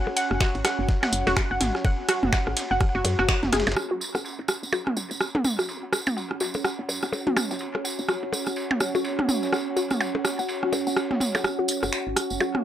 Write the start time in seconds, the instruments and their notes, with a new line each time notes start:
Already playing: ambient pad C#4 F#4 C#5 G#5
0.07 percussion blips
0.17 synth pluck F#5, closed hi-hat, ride
0.31 fm bass F#1, cross-stick
0.41 synth pluck F#4, finger snap, kick, snare, ride
0.55 fm bass G#1, ride
0.65 synth pluck F#5, cross-stick, snare, closed hi-hat, ride, percussion blips
0.79 fm bass F#1
0.89 kick, snare, ride
1.03 synth pluck F#5, cross-stick, snare, mid tom, ride, percussion blips
1.13 fm bass F#1, closed hi-hat
1.27 fm bass E1, synth pluck F#4, snare, ride, percussion blips
1.37 finger snap, kick, cross-stick, snare, ride
1.51 fm bass F#1, synth pluck F#5
1.61 fm bass G#1, snare, closed hi-hat, mid tom, ride
1.75 cross-stick, snare
1.85 synth pluck F#5, kick, ride, percussion blips
2.09 synth pluck F#4, cross-stick, closed hi-hat, ride
2.23 fm bass F#1, mid tom
2.33 synth pluck F#5, finger snap, kick, snare, ride, percussion blips
2.47 fm bass G#1, cross-stick, percussion blips
2.57 snare, closed hi-hat, ride
2.71 fm bass F#1, synth pluck F#5
2.81 kick, cross-stick, ride
2.95 fm bass F#1, synth pluck F#4
3.05 fm bass F#2, closed hi-hat, ride, percussion blips
3.19 fm bass F#1, synth pluck F#4, cross-stick
3.29 synth pluck F#4, finger snap, kick, snare, ride
3.43 fm bass F#1, snare, mid tom
3.53 fm bass F#1, synth pluck G#4, cross-stick, snare, closed hi-hat, mid tom, ride
3.60 snare, ride
3.67 fm bass F#1, snare, ride, percussion blips
3.72 snare, ride
3.76 ambient pad C#4, cross-stick, ride, tambourine
3.90 ambient pad F#4, synth pluck F#4
3.99 ambient pad C#5, ride, tambourine
4.15 fm bass F#1, synth pluck F#5, cross-stick, tambourine, percussion blips
4.25 ride, tambourine
4.39 fm bass G#1, ride
4.48 synth pluck F#5, cross-stick, ride, tambourine
4.63 fm bass F#1, tambourine
4.72 synth pluck F#4, ride, tambourine, percussion blips
4.87 cross-stick, snare, mid tom
4.97 fm bass F#1, synth pluck F#5, ride, tambourine
5.11 fm bass E1, tambourine
5.21 cross-stick, ride, tambourine
5.35 fm bass F#1, synth pluck F#5, mid tom, percussion blips
5.44 fm bass G#1, mid tom, ride, tambourine
5.59 synth pluck F#4, cross-stick, snare, tambourine
5.69 ride, tambourine
5.83 synth pluck F#5
5.93 cross-stick, ride, tambourine, percussion blips
6.03 fm bass F#1, ambient pad F#5, mid tom, tambourine, percussion blips
6.17 synth pluck F#5, ride, tambourine
6.31 fm bass G#1, cross-stick
6.40 synth pluck F#4, snare, ride, tambourine
6.54 fm bass F#1, tambourine, percussion blips
6.65 synth pluck F#5, cross-stick, ride, tambourine
6.79 fm bass F#1
6.89 fm bass F#2, ride, tambourine
7.02 fm bass F#1, synth pluck F#5, cross-stick, snare, tambourine
7.13 ride, tambourine, percussion blips
7.27 fm bass F#1, synth pluck F#4, mid tom
7.37 fm bass F#1, cross-stick, mid tom, ride, tambourine, percussion blips
7.51 fm bass F#1, synth pluck F#5, snare, tambourine
7.59 ride, tambourine
7.75 cross-stick, percussion blips
7.85 synth pluck F#5, ride, tambourine
7.99 fm bass F#1, tambourine
8.09 synth pluck F#4, cross-stick, ride, tambourine
8.23 fm bass G#1, ride
8.33 synth pluck F#5, ride, tambourine, percussion blips
8.46 fm bass F#1, cross-stick, tambourine
8.56 ride, tambourine
8.71 synth pluck F#5, snare, mid tom, percussion blips
8.80 fm bass F#1, cross-stick, ride, tambourine
8.95 fm bass E1, synth pluck F#4, tambourine, percussion blips
9.04 ride, tambourine
9.19 fm bass F#1, synth pluck F#5, cross-stick, mid tom
9.29 fm bass G#1, mid tom, ride, tambourine
9.43 snare, tambourine
9.52 synth pluck F#5, cross-stick, ride, tambourine, percussion blips
9.76 synth pluck F#4, ride, tambourine
9.90 fm bass F#1, cross-stick, mid tom, tambourine
10.00 synth pluck F#5, ride, tambourine, percussion blips
10.15 fm bass G#1, percussion blips
10.24 cross-stick, snare, ride, tambourine
10.39 fm bass F#1, synth pluck F#5, tambourine
10.49 ride, tambourine
10.63 fm bass F#1, synth pluck F#4, cross-stick
10.73 fm bass F#2, ride, tambourine, percussion blips
10.87 fm bass F#1, synth pluck F#5, tambourine
10.97 cross-stick, ride, tambourine
11.11 fm bass F#1, snare, mid tom
11.20 fm bass F#1, synth pluck F#5, mid tom, ride, tambourine
11.35 fm bass F#1, cross-stick, snare, tambourine, percussion blips
11.44 cross-stick, tambourine
11.59 synth pluck F#4
11.68 closed hi-hat, tambourine
11.83 fm bass F#1, synth pluck F#5, cross-stick, tambourine, percussion blips
11.93 finger snap, tambourine
12.07 fm bass G#1
12.16 synth pluck F#5, cross-stick, closed hi-hat, tambourine
12.30 fm bass F#1, tambourine
12.40 synth pluck F#4, tambourine, percussion blips
12.55 cross-stick, mid tom